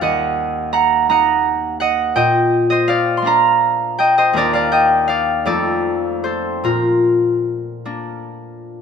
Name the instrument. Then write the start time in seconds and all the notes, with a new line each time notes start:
harp
Already playing: A#3 D#4 F5 A#5
0.01 D#2 D#5 F#5
0.73 F#5 A#5
1.09 A#3 D#4 F#5 A#5
1.80 D#5 F#5
2.16 A#2 D#5 G5
2.70 C5 D#5
2.88 D5 F5
3.17 C6
3.22 A#3 D4 F5
3.27 A#5
3.99 D#5 G5
4.18 C5 D#5
4.33 D#2 A#3 D4 A#4
4.37 D5
4.53 D5 F5
4.72 D#5 G5
5.08 D5 F5
5.45 F2 A3 D#4 A4 D5
6.24 A4 C5
6.64 A#2 F4 A#4
7.85 A#3 D4